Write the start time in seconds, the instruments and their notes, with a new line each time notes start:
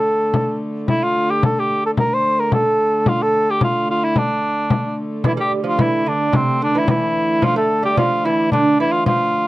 Already playing: hurdy-gurdy D3 A3, cor anglais A4
0.34 frame drum
0.88 hurdy-gurdy D3 A3, cor anglais E4, frame drum
1.03 cor anglais F4
1.16 frame drum
1.31 cor anglais G4
1.43 cor anglais A4, frame drum
1.59 cor anglais G4
1.70 frame drum
1.86 cor anglais A4
1.97 cor anglais A#4, frame drum
2.13 cor anglais C5
2.24 frame drum
2.40 cor anglais A#4
2.52 cor anglais A4, frame drum
2.79 frame drum
3.06 cor anglais F4, frame drum
3.22 cor anglais A4
3.34 frame drum
3.50 cor anglais G4
3.61 cor anglais F4, frame drum
3.88 cor anglais F4, frame drum
4.04 cor anglais E4
4.16 cor anglais D4, frame drum
4.70 frame drum
5.24 hurdy-gurdy D3 A3, lute E3, cor anglais E4, frame drum
5.37 lute G3, cor anglais G4
5.52 frame drum
5.64 lute F3
5.68 cor anglais F4
5.78 lute E3, cor anglais E4, frame drum
6.06 lute D3, cor anglais D4, frame drum
6.32 lute C3, cor anglais C4, frame drum
6.61 lute D3, cor anglais D4, frame drum
6.75 lute E3, cor anglais E4
6.88 lute E3, cor anglais E4, frame drum
7.16 frame drum
7.42 lute F3, cor anglais F4, frame drum
7.56 lute A3, cor anglais A4
7.70 frame drum
7.83 lute G3, cor anglais G4
7.97 lute F3, cor anglais F4, frame drum
8.24 lute E3, cor anglais E4, frame drum
8.52 lute D3, cor anglais D4, frame drum
8.80 lute E3, cor anglais E4
8.92 cor anglais F4
9.05 lute F3, cor anglais F4, frame drum
9.34 frame drum